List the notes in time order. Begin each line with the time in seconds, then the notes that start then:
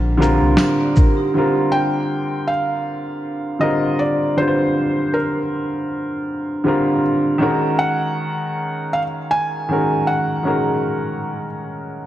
Already playing: A#1 D3 G3 C4 F4 A#4
0.18 D3 G3 C4 F4 A#4
0.22 closed hi-hat, shaker
0.42 C2
0.57 snare, closed hi-hat, tambourine
0.80 A#4 D5
0.96 G4 A#4, kick, shaker
1.17 D#4 G4
1.34 D3 G3 C4 F4
1.38 A#4
1.72 G5
2.48 F5
3.59 D3 G3 C4 F4 A#4 D#5
3.99 D5
4.37 D3 G3 C4 F4 C5
4.41 B4
4.48 C5
5.14 A#4
6.64 D3 G3 C4 F4
6.68 A#4
7.38 D#3 G#3 C#4 F#4
7.43 A#4
7.79 F#5
8.93 F5
9.31 G#5
9.69 D#3 G#3 C#4 F#4
9.73 A#4
10.07 F#5
10.43 D#3 G#3 C#4 F#4
10.47 A#4